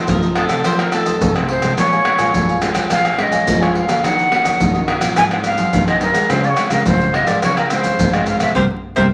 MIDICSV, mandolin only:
0, 0, Header, 1, 2, 480
1, 0, Start_track
1, 0, Tempo, 564440
1, 1513, Time_signature, 4, 2, 24, 8
1, 7769, End_track
2, 0, Start_track
2, 0, Title_t, "Mandolin"
2, 0, Program_c, 0, 25
2, 77, Note_on_c, 0, 70, 107
2, 305, Note_off_c, 0, 70, 0
2, 308, Note_on_c, 0, 69, 93
2, 553, Note_off_c, 0, 69, 0
2, 556, Note_on_c, 0, 72, 101
2, 676, Note_off_c, 0, 72, 0
2, 679, Note_on_c, 0, 70, 78
2, 787, Note_off_c, 0, 70, 0
2, 790, Note_on_c, 0, 69, 79
2, 1126, Note_off_c, 0, 69, 0
2, 7271, Note_on_c, 0, 67, 110
2, 7274, Note_on_c, 0, 70, 100
2, 7279, Note_on_c, 0, 72, 102
2, 7350, Note_off_c, 0, 67, 0
2, 7351, Note_off_c, 0, 70, 0
2, 7352, Note_off_c, 0, 72, 0
2, 7619, Note_on_c, 0, 70, 98
2, 7619, Note_on_c, 0, 72, 107
2, 7624, Note_on_c, 0, 67, 96
2, 7702, Note_off_c, 0, 72, 0
2, 7703, Note_off_c, 0, 67, 0
2, 7704, Note_off_c, 0, 70, 0
2, 7769, End_track
0, 0, End_of_file